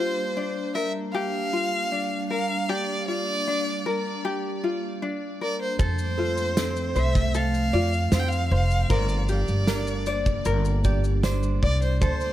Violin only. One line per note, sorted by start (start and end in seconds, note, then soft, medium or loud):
0.00 0.71 C5 loud
0.75 0.92 E5 loud
1.13 2.26 F5 loud
2.30 2.71 F5 loud
2.70 3.08 D5 loud
3.08 4.21 D5 loud
5.43 5.60 D5 medium
5.62 5.79 C5 medium
5.82 7.00 C5 loud
6.99 7.39 E5 loud
7.37 8.14 F5 loud
8.15 8.21 F5 loud
8.20 8.30 G5 medium
8.29 8.53 F5 loud
8.54 8.95 F5 loud
8.93 9.31 D5 medium
9.32 10.43 D5 medium
11.63 11.81 D5 medium
11.83 12.01 C5 medium
12.03 12.33 C5 loud